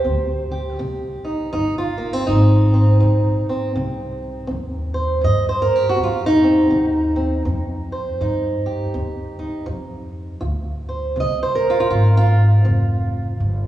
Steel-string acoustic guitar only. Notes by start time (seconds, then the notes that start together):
Already playing: G4 C5
0.05 C4
0.51 G4
0.78 C3 D#4
1.25 D#4
1.53 G3 D#4
1.78 F4
1.98 A#3
2.13 C4
2.26 G2 D#4
2.74 C4
3.00 G3
3.49 C4
3.76 C3
4.47 C4
4.94 C5
5.21 G2 D#5
5.49 C5
5.62 A#4
5.76 G4
5.89 F#4
5.96 C4
6.03 F4
6.26 D#4
6.43 C4
6.71 C3
7.16 C4
7.45 C4
7.92 C5
8.21 G2 D#4
8.66 G4
8.94 C4
9.39 D#4
9.66 F3
10.41 F4
10.89 C5
11.16 C3
11.20 D#5
11.43 C5
11.55 A#4
11.70 F4
11.80 F4
11.90 F4
12.17 F4
12.65 F3